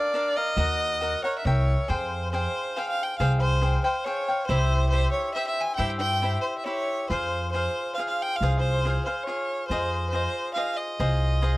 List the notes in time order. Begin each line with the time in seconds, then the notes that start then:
Already playing: D4 A#4 D5 F5
0.14 D4 A#4 D5 F5
0.36 A#4 D5 D#5 F5
0.57 D#2 F#4 A#4 D#5 F#5
1.01 F#4 A#4 D#5 F#5
1.24 A#4 C#5 D#5 F#5
1.38 E5
1.45 C2 A#4 C#5 E5 G5
1.88 F2 G#4 C5 F5 G5
2.31 G#4 C5 F5 G5
2.76 G#4 C5 F5 G5
2.89 F5
3.03 G5
3.18 C2 G#4 C5 F5 G5
3.40 C5
3.62 G#4 C5 F5 G5
3.84 C5 F5 G5
4.04 G#4 C5 C#5 F5 G5
4.28 C5 F5 G5
4.46 C2 E4 G4 C5 E5
4.89 E4 G4 C5
4.94 E5
5.11 C#5
5.34 E4 G4 C5 E5
5.47 E5
5.61 G#5
5.75 G2 E4 G4 C5 E5 G5
5.98 G5
6.22 E4 G4 C5 E5
6.41 C5
6.58 E5
6.64 E4 G4 C#5 E5
7.09 F2 F4 G#4 C5 F5
7.51 F4 G#4 C5
7.56 F5
7.95 F4 F5
7.99 G#4 C5 F5
8.08 F5
8.22 G5
8.36 F5
8.41 C2 F4 G#4 C5 F5
8.59 C5
8.85 F4 G#4 C5 F5
9.04 G#4 C5 F5
9.23 C#5
9.27 F4 G#4 F5
9.67 F2 F4 C5
9.71 G#4 C5 D#5
10.09 F4 C5
10.14 G#4 C5 D#5
10.54 F4 G#4 C5 D#5 F5
10.77 D#5
11.00 C2 F4 G#4 C5 D#5
11.42 F4 G#4 C5 D#5